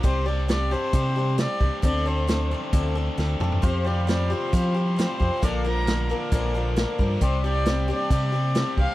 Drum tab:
HH |x---x---x---x---|x---x---x-------|x---x---x---x---|x---x---x---x---|
SD |----o-------o---|----o-------o---|----o-------o---|----o-------o---|
T2 |----------------|--------------o-|----------------|----------------|
FT |----------------|---------------o|----------------|----------------|
BD |o-------o-----o-|o-------o-------|o-------o-----o-|o-------o-----o-|

HH |x---x---x---x---|
SD |----o-------o---|
T2 |----------------|
FT |----------------|
BD |o-------o-----o-|